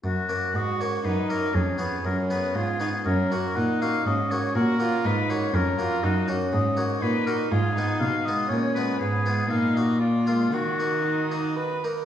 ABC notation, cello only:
X:1
M:3/4
L:1/8
Q:1/4=120
K:F#
V:1 name="Cello" clef=bass
F,,2 G,,2 F,,2 | E,,2 F,,2 G,,2 | F,,2 A,,2 G,,2 | A,,2 G,,2 E,,2 |
[K:Ebm] G,,2 A,,2 B,,2 | A,,2 C,2 B,,2 | A,,2 B,,4 | E,4- E, z |]